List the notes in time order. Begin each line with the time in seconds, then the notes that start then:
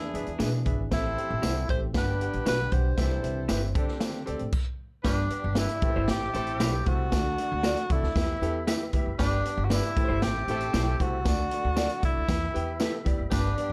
Already playing: E3 B3 D4 E4 G#4
0.14 F#2 D4 G#4 B4 E5, closed hi-hat
0.27 E2, closed hi-hat
0.39 B2 D4 G#4 B4 E5, snare, closed hi-hat, tambourine
0.65 G#1 D4 G#4 B4 E5, kick, closed hi-hat
0.91 A1 A2 A3 C4 E4 G4 A4 C5 E5, kick, snare, closed hi-hat, tambourine
1.18 C4 G4 A4 E5, closed hi-hat
1.30 A1
1.42 C2 C4 E4 G4 A4 C5 F#5, snare, closed hi-hat, tambourine
1.68 A1 C4 G4 A4 C5 E5, kick, closed hi-hat
1.93 G1 G2 D3 G3 B3 D4 G4 B4 F#5, kick, snare, closed hi-hat, tambourine
2.21 D4 G4 B4 F#5, closed hi-hat
2.33 A1, closed hi-hat
2.46 B1 D4 F#4 G4 B4 F#5, snare, closed hi-hat, tambourine
2.72 B1 D4 G4 B4 C5 F#5, kick, closed hi-hat
2.97 C2 C3 E3 C4 E4 G4 A4 B4 E5, kick, snare, closed hi-hat, tambourine
3.22 C2 C4 G4 B4 E5, closed hi-hat
3.49 G1 C4 E4 G4 B4 E5, snare, closed hi-hat, tambourine
3.75 D3 A3 C4 D4 G4 A4 D5, kick, closed hi-hat
3.88 snare
4.00 snare, closed hi-hat, tambourine
4.26 D2 C4 G4 A4 D5, closed hi-hat
4.39 A2, closed hi-hat
4.52 kick, crash
5.04 G1 G2 B3 D4 G4 B4 D5 B5, kick, snare, closed hi-hat, tambourine
5.30 B3 D4 G4 D5, closed hi-hat
5.44 G1
5.55 B3 D4 E4 G4 B4 D5, snare, closed hi-hat, tambourine
5.69 closed hi-hat
5.81 A1 A2 A3 C4 E4 G4 B4 C5 E5 A5, kick, closed hi-hat
5.90 C5
5.96 G1 E4 G4 C5
6.07 A1 C4 E4 G4, snare, closed hi-hat, tambourine
6.33 A1 A3 C4 E4 G4 A4 C5, closed hi-hat
6.47 closed hi-hat
6.60 B1 A3 E4 G4 B4 C5, snare, closed hi-hat, tambourine
6.86 C2 A3 E4 F#4 G4 C5, kick, closed hi-hat
7.10 D2 D3 A3 D4 F#4 A4 D5, kick, snare, closed hi-hat, tambourine
7.14 D5
7.38 A3 D4 F#4 D5, closed hi-hat
7.52 D2
7.63 A3 D4 F#4 A4 D5, snare, closed hi-hat, tambourine
7.77 closed hi-hat
7.90 C2 A3 D4 E4 F#4 A4, kick, closed hi-hat
8.02 D2, snare
8.16 E2 E3 B3 E4 G4 B4 E5 B5, kick, snare, closed hi-hat, tambourine
8.41 E2 B3 E4 G4 A4, closed hi-hat
8.67 B3 E4 G4 B4 E5, snare, closed hi-hat, tambourine
8.93 D2 B3 E4 G4 E5, kick, closed hi-hat
9.06 F#1
9.18 G1 G2 B3 D4 G4 B4 D5 B5, kick, snare, closed hi-hat, tambourine
9.43 B3 D4 G4 B4, closed hi-hat
9.57 G1
9.64 F#4
9.70 B3 D4 E4 G4 B4 D5, snare, closed hi-hat, tambourine
9.83 closed hi-hat
9.96 A1 A2 A3 C4 E4 G4 B4 C5 E5 A5, kick, closed hi-hat
10.04 C5
10.09 G1 E4 G4 C5
10.22 A1 C4 E4 G4, snare, closed hi-hat, tambourine
10.48 A1 A3 C4 E4 G4 A4 C5, closed hi-hat
10.60 closed hi-hat
10.73 B1 A3 E4 G4 C5, snare, closed hi-hat, tambourine
11.00 C2 A3 E4 F#4 G4 C5, kick, closed hi-hat
11.25 D2 D3 A3 D4 F#4 A4 D5, kick, snare, closed hi-hat, tambourine
11.51 A3 D4 F#4 D5, closed hi-hat
11.65 D2
11.76 A3 D4 F#4 A4 D5, snare, closed hi-hat, tambourine
11.89 closed hi-hat
12.03 C2 A3 D4 E4 F#4 D5, kick, closed hi-hat
12.17 D2
12.27 E2 E3 B3 E4 G4 B4 E5 B5, kick, snare, closed hi-hat, tambourine
12.54 E2 B3 E4 G4 G5, closed hi-hat
12.80 B3 E4 G4 A4 B4, snare, closed hi-hat, tambourine
13.05 D2 B3 E4 G4 D5, kick, closed hi-hat
13.19 F#1
13.30 G1 G2 B3 D4 G4 B4 D5, kick, snare, closed hi-hat, tambourine
13.56 B3 D4 G4 D5, closed hi-hat